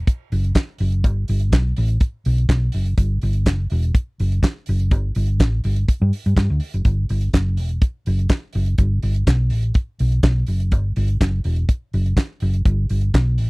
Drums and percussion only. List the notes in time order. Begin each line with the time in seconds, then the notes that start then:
0.07 kick, closed hi-hat
0.32 open hi-hat
0.44 closed hi-hat
0.55 kick, snare, clap, closed hi-hat
0.78 open hi-hat
0.92 closed hi-hat
1.04 kick, closed hi-hat
1.28 open hi-hat
1.40 closed hi-hat
1.52 kick, snare, clap, closed hi-hat
1.76 open hi-hat
1.88 closed hi-hat
2.00 kick, closed hi-hat
2.25 open hi-hat
2.38 closed hi-hat
2.49 kick, snare, clap, closed hi-hat
2.72 open hi-hat
2.86 closed hi-hat
2.98 kick, closed hi-hat
3.22 open hi-hat
3.33 closed hi-hat
3.46 kick, snare, clap, closed hi-hat
3.70 open hi-hat
3.83 closed hi-hat
3.95 kick, closed hi-hat
4.20 open hi-hat
4.32 closed hi-hat
4.43 kick, snare, clap, closed hi-hat
4.66 open hi-hat
4.80 closed hi-hat
4.91 kick, closed hi-hat
5.15 open hi-hat
5.27 closed hi-hat
5.40 kick, snare, clap, closed hi-hat
5.64 open hi-hat
5.76 closed hi-hat
5.88 kick, closed hi-hat
6.13 open hi-hat
6.26 closed hi-hat
6.37 kick, snare, clap, closed hi-hat
6.60 open hi-hat
6.74 closed hi-hat
6.85 kick, closed hi-hat
7.09 open hi-hat
7.21 closed hi-hat
7.33 kick, snare, clap, closed hi-hat
7.57 open hi-hat
7.69 closed hi-hat
7.82 kick, closed hi-hat
8.06 open hi-hat
8.19 closed hi-hat
8.29 kick, snare, clap, closed hi-hat
8.53 open hi-hat
8.66 closed hi-hat
8.78 kick, closed hi-hat
9.03 open hi-hat
9.14 closed hi-hat
9.27 kick, snare, clap, closed hi-hat
9.50 open hi-hat
9.63 closed hi-hat
9.74 kick, closed hi-hat
9.99 open hi-hat
10.12 closed hi-hat
10.23 kick, snare, clap, closed hi-hat
10.46 open hi-hat
10.60 closed hi-hat
10.71 kick, closed hi-hat
10.96 open hi-hat
11.08 closed hi-hat
11.21 kick, snare, clap, closed hi-hat
11.44 open hi-hat
11.56 closed hi-hat
11.69 kick, closed hi-hat
11.93 open hi-hat
12.06 closed hi-hat
12.17 kick, snare, clap, closed hi-hat
12.40 open hi-hat
12.54 closed hi-hat
12.65 kick, closed hi-hat
12.89 open hi-hat
13.01 closed hi-hat
13.14 kick, snare, clap, closed hi-hat
13.38 open hi-hat